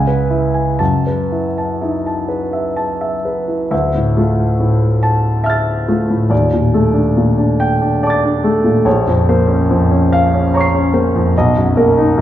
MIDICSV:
0, 0, Header, 1, 2, 480
1, 0, Start_track
1, 0, Tempo, 974026
1, 391, Time_signature, 3, 2, 24, 8
1, 1833, Tempo, 892857
1, 2313, Tempo, 849858
1, 4713, Tempo, 824176
1, 6664, End_track
2, 0, Start_track
2, 0, Title_t, "Grand piano"
2, 0, Program_c, 0, 0
2, 0, Note_on_c, 0, 37, 47
2, 0, Note_on_c, 0, 80, 52
2, 22, Control_c, 0, 64, 127
2, 37, Note_on_c, 0, 71, 39
2, 107, Note_off_c, 0, 80, 0
2, 150, Note_on_c, 0, 64, 37
2, 220, Note_off_c, 0, 71, 0
2, 267, Note_on_c, 0, 80, 36
2, 342, Note_off_c, 0, 64, 0
2, 384, Note_off_c, 0, 37, 0
2, 389, Note_on_c, 0, 81, 51
2, 391, Note_off_c, 0, 80, 0
2, 394, Note_on_c, 0, 42, 43
2, 401, Control_c, 0, 64, 0
2, 508, Control_c, 0, 64, 127
2, 526, Note_on_c, 0, 71, 33
2, 592, Note_off_c, 0, 81, 0
2, 650, Note_on_c, 0, 64, 34
2, 720, Note_off_c, 0, 71, 0
2, 778, Note_on_c, 0, 81, 36
2, 841, Note_off_c, 0, 64, 0
2, 895, Note_on_c, 0, 64, 34
2, 896, Note_on_c, 0, 63, 28
2, 961, Note_off_c, 0, 81, 0
2, 1008, Note_off_c, 0, 63, 0
2, 1019, Note_on_c, 0, 81, 34
2, 1077, Note_off_c, 0, 64, 0
2, 1126, Note_on_c, 0, 71, 35
2, 1197, Note_off_c, 0, 81, 0
2, 1247, Note_on_c, 0, 76, 35
2, 1310, Note_off_c, 0, 71, 0
2, 1363, Note_on_c, 0, 81, 38
2, 1431, Note_off_c, 0, 76, 0
2, 1483, Note_on_c, 0, 76, 36
2, 1551, Note_off_c, 0, 81, 0
2, 1603, Note_on_c, 0, 71, 35
2, 1674, Note_off_c, 0, 76, 0
2, 1714, Note_on_c, 0, 64, 31
2, 1790, Note_off_c, 0, 71, 0
2, 1814, Note_off_c, 0, 42, 0
2, 1828, Note_on_c, 0, 38, 51
2, 1829, Note_on_c, 0, 76, 48
2, 1831, Note_off_c, 0, 64, 0
2, 1842, Control_c, 0, 64, 0
2, 1932, Control_c, 0, 64, 127
2, 1953, Note_on_c, 0, 45, 35
2, 2075, Note_on_c, 0, 65, 43
2, 2076, Note_on_c, 0, 57, 38
2, 2147, Note_off_c, 0, 45, 0
2, 2217, Note_off_c, 0, 76, 0
2, 2266, Note_off_c, 0, 57, 0
2, 2303, Note_on_c, 0, 45, 39
2, 2458, Note_off_c, 0, 65, 0
2, 2548, Note_on_c, 0, 81, 57
2, 2693, Note_off_c, 0, 45, 0
2, 2769, Note_off_c, 0, 81, 0
2, 2777, Note_on_c, 0, 81, 36
2, 2780, Note_on_c, 0, 76, 49
2, 2792, Note_on_c, 0, 89, 37
2, 2813, Note_on_c, 0, 93, 36
2, 3030, Note_on_c, 0, 65, 45
2, 3032, Note_on_c, 0, 57, 40
2, 3153, Note_on_c, 0, 45, 38
2, 3171, Note_off_c, 0, 76, 0
2, 3225, Note_off_c, 0, 57, 0
2, 3243, Note_off_c, 0, 81, 0
2, 3249, Note_off_c, 0, 38, 0
2, 3251, Note_off_c, 0, 89, 0
2, 3261, Note_off_c, 0, 93, 0
2, 3266, Note_on_c, 0, 39, 51
2, 3269, Note_on_c, 0, 74, 46
2, 3272, Note_off_c, 0, 65, 0
2, 3273, Note_off_c, 0, 45, 0
2, 3285, Control_c, 0, 64, 0
2, 3365, Control_c, 0, 64, 127
2, 3399, Note_on_c, 0, 46, 38
2, 3515, Note_on_c, 0, 69, 45
2, 3519, Note_on_c, 0, 57, 42
2, 3585, Note_off_c, 0, 46, 0
2, 3627, Note_on_c, 0, 62, 41
2, 3651, Note_off_c, 0, 74, 0
2, 3705, Note_off_c, 0, 57, 0
2, 3757, Note_on_c, 0, 46, 43
2, 3820, Note_off_c, 0, 62, 0
2, 3877, Note_on_c, 0, 62, 39
2, 3895, Note_off_c, 0, 69, 0
2, 4000, Note_on_c, 0, 79, 61
2, 4068, Note_off_c, 0, 62, 0
2, 4122, Note_on_c, 0, 62, 42
2, 4142, Note_off_c, 0, 46, 0
2, 4244, Note_on_c, 0, 74, 52
2, 4247, Note_on_c, 0, 81, 38
2, 4264, Note_on_c, 0, 86, 37
2, 4283, Note_on_c, 0, 93, 38
2, 4313, Note_off_c, 0, 62, 0
2, 4370, Note_on_c, 0, 62, 46
2, 4386, Note_off_c, 0, 79, 0
2, 4474, Note_on_c, 0, 57, 45
2, 4478, Note_on_c, 0, 69, 47
2, 4554, Note_off_c, 0, 62, 0
2, 4589, Note_on_c, 0, 46, 39
2, 4622, Note_off_c, 0, 74, 0
2, 4664, Note_off_c, 0, 57, 0
2, 4685, Note_off_c, 0, 39, 0
2, 4695, Note_off_c, 0, 81, 0
2, 4703, Note_off_c, 0, 86, 0
2, 4707, Note_on_c, 0, 34, 57
2, 4709, Note_off_c, 0, 46, 0
2, 4711, Note_on_c, 0, 73, 53
2, 4712, Note_off_c, 0, 69, 0
2, 4712, Note_off_c, 0, 93, 0
2, 4721, Control_c, 0, 64, 0
2, 4818, Control_c, 0, 64, 127
2, 4838, Note_on_c, 0, 41, 41
2, 4961, Note_on_c, 0, 58, 42
2, 4962, Note_on_c, 0, 72, 48
2, 5028, Note_off_c, 0, 41, 0
2, 5069, Note_on_c, 0, 61, 44
2, 5097, Note_off_c, 0, 73, 0
2, 5150, Note_off_c, 0, 58, 0
2, 5204, Note_on_c, 0, 41, 47
2, 5265, Note_off_c, 0, 61, 0
2, 5325, Note_on_c, 0, 61, 45
2, 5344, Note_off_c, 0, 72, 0
2, 5449, Note_on_c, 0, 77, 69
2, 5513, Note_off_c, 0, 61, 0
2, 5573, Note_on_c, 0, 61, 43
2, 5585, Note_off_c, 0, 41, 0
2, 5690, Note_on_c, 0, 82, 40
2, 5695, Note_on_c, 0, 73, 53
2, 5709, Note_on_c, 0, 85, 40
2, 5729, Note_on_c, 0, 96, 40
2, 5756, Note_off_c, 0, 61, 0
2, 5810, Note_on_c, 0, 61, 51
2, 5826, Note_off_c, 0, 77, 0
2, 5920, Note_on_c, 0, 58, 47
2, 5923, Note_on_c, 0, 72, 49
2, 5996, Note_off_c, 0, 61, 0
2, 6049, Note_on_c, 0, 41, 48
2, 6071, Note_off_c, 0, 73, 0
2, 6111, Note_off_c, 0, 58, 0
2, 6132, Note_off_c, 0, 34, 0
2, 6141, Note_off_c, 0, 82, 0
2, 6151, Note_off_c, 0, 85, 0
2, 6161, Note_off_c, 0, 72, 0
2, 6161, Note_off_c, 0, 96, 0
2, 6163, Note_off_c, 0, 41, 0
2, 6166, Control_c, 0, 64, 0
2, 6178, Note_on_c, 0, 75, 55
2, 6179, Note_on_c, 0, 35, 63
2, 6264, Control_c, 0, 64, 127
2, 6296, Note_on_c, 0, 42, 44
2, 6408, Note_on_c, 0, 58, 45
2, 6408, Note_on_c, 0, 70, 49
2, 6476, Note_off_c, 0, 42, 0
2, 6529, Note_on_c, 0, 63, 50
2, 6547, Note_off_c, 0, 75, 0
2, 6590, Note_off_c, 0, 58, 0
2, 6643, Note_on_c, 0, 42, 53
2, 6664, Note_off_c, 0, 35, 0
2, 6664, Note_off_c, 0, 42, 0
2, 6664, Note_off_c, 0, 63, 0
2, 6664, Note_off_c, 0, 70, 0
2, 6664, End_track
0, 0, End_of_file